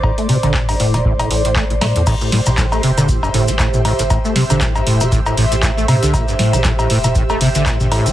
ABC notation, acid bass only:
X:1
M:4/4
L:1/16
Q:"Swing 16ths" 1/4=118
K:Am
V:1 name="Acid bass" clef=bass
A,, A, C, D, A,, G,, A,, A, A,, A,, A,, A,, A, A,, A, A,, | A,, A,, A,, A,, A,, A, C, D, A,, G,, A,, A, A,, A,, A,, A,, | A,, A, C, D, A,, G,, A,, A, A,, A,, A,, A,, A,, A, C, D, | A,, G,, A,, A, A,, A,, A,, A,, A,, A, C, D, A,, G,, A,, A, |]